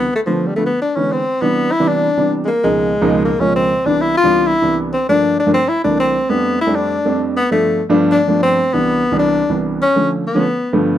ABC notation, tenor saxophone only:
X:1
M:4/4
L:1/16
Q:1/4=196
K:Ephr
V:1 name="Tenor saxophone"
(3B,2 A,2 F,2- (3F,2 G,2 A,2 B,2 D2 _D2 C2- | [K:C] C2 B,4 E2 D6 z3/2 ^G,/2 | ^A,2 ^G,8 A,2 ^C2 =C2- | C2 D2 E2 F4 E4 z2 |
C2 D4 D2 C2 E2 D2 C2- | C2 B,4 E2 D6 z2 | B,2 A,4- A,/2 z3 z/2 D4 C2- | C2 B,6 D6 z2 |
^C4 z2 B,8 z2 |]